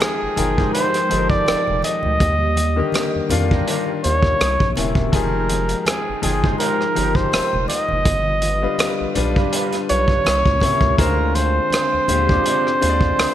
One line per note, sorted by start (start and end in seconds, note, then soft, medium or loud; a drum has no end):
0.00 0.22 F3 medium
0.00 2.17 F3 medium
0.00 2.17 G#3 medium
0.00 0.23 D#4 medium
0.00 2.17 D#4 medium
0.00 0.23 G4 medium
0.00 0.23 G#4 loud
0.00 0.73 G#4 medium
0.00 2.17 G5 medium
0.00 cross-stick loud
0.00 closed hi-hat medium
0.00 high conga medium
0.23 0.29 G1 soft
0.36 0.69 G1 medium
0.36 1.00 F3 medium
0.36 1.01 D#4 medium
0.36 1.02 A#4 medium
0.36 1.01 G5 medium
0.36 closed hi-hat medium
0.36 high conga soft
0.36 low conga medium
0.58 0.73 G#3 soft
0.58 0.73 D#4 medium
0.58 0.73 G4 medium
0.58 0.72 C5 medium
0.58 kick medium
0.73 0.97 G#3 medium
0.73 0.97 D#4 medium
0.73 0.97 G4 medium
0.73 1.26 C5 loud
0.73 0.97 C5 medium
0.73 closed hi-hat medium
0.94 cross-stick soft
0.94 closed hi-hat soft
1.09 1.42 G1 medium
1.09 2.19 F3 medium
1.09 2.20 D#4 medium
1.09 2.20 G4 medium
1.09 1.18 A4 medium
1.09 closed hi-hat medium
1.09 muted conga soft
1.18 2.24 A#4 medium
1.30 1.80 D5 loud
1.30 kick medium
1.47 1.57 F1 soft
1.47 cross-stick loud
1.47 closed hi-hat medium
1.47 high conga medium
1.67 1.82 F1 medium
1.67 low conga medium
1.82 3.26 D#5 loud
1.82 closed hi-hat medium
1.82 high conga medium
2.03 2.19 D2 medium
2.03 high conga medium
2.03 low conga medium
2.20 2.82 D#2 loud
2.20 4.37 G3 medium
2.20 4.37 A#3 medium
2.20 4.37 G4 medium
2.20 kick loud
2.20 closed hi-hat medium
2.56 closed hi-hat medium
2.56 muted conga soft
2.56 high conga medium
2.76 3.23 D3 medium
2.76 3.22 D#3 medium
2.76 3.23 A#3 medium
2.76 3.24 G4 medium
2.92 cross-stick loud
2.92 closed hi-hat medium
2.92 muted conga soft
2.92 high conga medium
3.16 3.22 F2 medium
3.29 3.62 F2 medium
3.29 3.93 D#3 medium
3.29 3.94 A#3 medium
3.29 3.94 D4 medium
3.29 3.94 F4 loud
3.29 closed hi-hat medium
3.29 high conga soft
3.29 low conga medium
3.51 3.66 A#3 soft
3.51 3.66 D4 soft
3.51 3.66 G4 medium
3.51 3.65 A#4 medium
3.51 kick medium
3.67 3.89 A#3 medium
3.67 3.89 D4 medium
3.67 3.90 G4 medium
3.67 3.90 A#4 medium
3.67 closed hi-hat medium
4.03 4.35 D#2 medium
4.03 4.39 D#3 medium
4.03 4.40 A#3 medium
4.03 4.40 D4 medium
4.03 4.41 F4 medium
4.03 4.73 C#5 loud
4.03 closed hi-hat medium
4.23 kick medium
4.23 cross-stick soft
4.40 4.58 C2 medium
4.40 5.12 C3 medium
4.40 5.12 A#3 medium
4.40 5.12 C#4 medium
4.40 5.12 E4 medium
4.40 cross-stick loud
4.40 closed hi-hat medium
4.40 high conga medium
4.60 4.75 A#1 loud
4.60 kick medium
4.60 low conga medium
4.76 4.94 D#1 medium
4.76 5.08 C3 medium
4.76 5.08 A#3 medium
4.76 5.09 C#4 medium
4.76 5.09 E4 medium
4.76 closed hi-hat medium
4.76 muted conga soft
4.76 high conga medium
4.95 5.10 E1 medium
4.95 kick medium
4.95 high conga medium
4.95 low conga medium
5.12 5.75 F1 loud
5.12 6.08 F3 medium
5.12 8.03 F3 medium
5.12 8.03 G#3 medium
5.12 8.03 D#4 medium
5.12 6.08 D#4 medium
5.12 6.09 G4 medium
5.12 6.09 G#4 loud
5.12 5.81 A#4 medium
5.12 8.03 G5 medium
5.12 kick loud
5.12 closed hi-hat medium
5.12 muted conga soft
5.49 closed hi-hat medium
5.49 high conga medium
5.69 closed hi-hat soft
5.81 5.88 A#4 medium
5.85 6.22 G#4 medium
5.85 cross-stick loud
5.85 closed hi-hat medium
5.85 high conga medium
6.09 6.15 G1 medium
6.22 6.55 G1 medium
6.22 6.86 F3 medium
6.22 6.86 D#4 medium
6.22 6.57 G#4 medium
6.22 6.87 G#4 medium
6.22 6.87 G5 medium
6.22 closed hi-hat medium
6.22 high conga soft
6.22 low conga medium
6.44 6.58 G#3 soft
6.44 6.58 D#4 medium
6.44 6.58 G4 medium
6.44 6.58 C5 medium
6.44 kick medium
6.58 6.82 G#3 medium
6.58 6.82 D#4 medium
6.58 6.82 G4 medium
6.58 7.17 A#4 medium
6.58 6.82 C5 medium
6.58 closed hi-hat medium
6.58 muted conga soft
6.81 cross-stick soft
6.95 7.27 G1 medium
6.95 8.05 F3 medium
6.95 8.06 D#4 medium
6.95 8.06 G4 medium
6.95 8.06 A#4 medium
6.95 closed hi-hat medium
6.95 muted conga soft
7.15 7.68 C5 medium
7.15 kick medium
7.15 cross-stick soft
7.32 7.42 F1 soft
7.32 cross-stick loud
7.32 closed hi-hat medium
7.32 muted conga soft
7.32 high conga medium
7.53 7.67 F1 loud
7.53 low conga soft
7.68 9.11 D#5 loud
7.68 closed hi-hat medium
7.68 muted conga soft
7.68 high conga medium
7.89 8.04 F#1 medium
7.89 high conga medium
7.89 low conga medium
8.05 8.67 G1 loud
8.05 10.23 G3 medium
8.05 10.23 F4 medium
8.05 10.23 B4 medium
8.05 kick loud
8.05 closed hi-hat medium
8.42 closed hi-hat medium
8.42 muted conga soft
8.42 high conga medium
8.62 9.08 D3 medium
8.62 9.08 G3 medium
8.62 9.08 F4 medium
8.62 9.09 B4 medium
8.78 cross-stick loud
8.78 closed hi-hat medium
8.78 high conga medium
9.01 9.07 B1 medium
9.15 9.47 B1 medium
9.15 9.79 G3 medium
9.15 9.79 D4 medium
9.15 9.79 F4 medium
9.15 9.80 B4 loud
9.15 closed hi-hat medium
9.15 high conga soft
9.15 low conga medium
9.36 9.51 G3 medium
9.36 9.51 D4 medium
9.36 9.51 F4 medium
9.36 9.51 B4 medium
9.36 kick medium
9.53 9.75 G3 medium
9.53 9.75 D4 medium
9.53 9.75 F4 medium
9.53 9.75 B4 medium
9.53 closed hi-hat medium
9.72 cross-stick soft
9.72 closed hi-hat soft
9.88 10.20 B1 medium
9.88 10.25 G3 medium
9.88 10.25 D4 medium
9.88 10.26 F4 medium
9.88 10.26 B4 medium
9.88 10.95 C#5 loud
9.88 closed hi-hat medium
10.08 kick medium
10.08 cross-stick soft
10.25 10.43 C2 medium
10.25 10.98 C3 medium
10.25 10.98 A#3 medium
10.25 10.98 C#4 medium
10.25 10.98 E4 medium
10.25 cross-stick loud
10.25 closed hi-hat medium
10.25 muted conga soft
10.25 high conga medium
10.45 10.60 C#2 medium
10.45 kick medium
10.45 low conga medium
10.60 10.93 C3 medium
10.60 10.94 A#3 medium
10.60 10.94 E4 medium
10.60 10.94 C#5 medium
10.60 kick medium
10.60 closed hi-hat medium
10.60 muted conga soft
10.60 high conga medium
10.81 10.95 C#2 medium
10.81 kick medium
10.81 high conga medium
10.81 low conga medium
10.98 11.60 D2 loud
10.98 11.93 D3 medium
10.98 13.34 D3 medium
10.98 11.94 G#3 medium
10.98 13.34 G#3 medium
10.98 13.34 C4 medium
10.98 11.06 D#4 medium
10.98 13.34 F4 medium
10.98 11.37 A#4 medium
10.98 11.95 C5 loud
10.98 kick loud
10.98 closed hi-hat medium
10.98 muted conga soft
11.06 11.98 F4 medium
11.35 13.34 C5 loud
11.35 closed hi-hat medium
11.35 high conga medium
11.70 cross-stick loud
11.70 closed hi-hat medium
11.70 high conga medium
11.94 12.00 D#2 medium
12.08 12.40 D#2 medium
12.08 12.71 D3 medium
12.08 12.72 G#3 medium
12.08 12.72 F4 medium
12.08 12.73 G4 medium
12.08 closed hi-hat medium
12.08 muted conga soft
12.08 high conga soft
12.08 low conga medium
12.29 12.44 C4 medium
12.29 12.44 F4 medium
12.29 12.44 G#4 medium
12.29 12.43 D5 medium
12.29 kick medium
12.44 12.68 C4 medium
12.44 12.68 F4 medium
12.44 12.68 G#4 medium
12.44 12.68 D5 medium
12.44 closed hi-hat medium
12.44 muted conga soft
12.67 cross-stick soft
12.81 13.13 D#2 medium
12.81 13.34 D3 medium
12.81 13.34 G#3 medium
12.81 13.34 F4 medium
12.81 12.89 C5 medium
12.81 closed hi-hat medium
12.81 muted conga soft
12.89 13.34 D5 medium
13.01 kick medium
13.17 13.28 D2 soft
13.17 cross-stick loud
13.17 closed hi-hat medium
13.17 high conga medium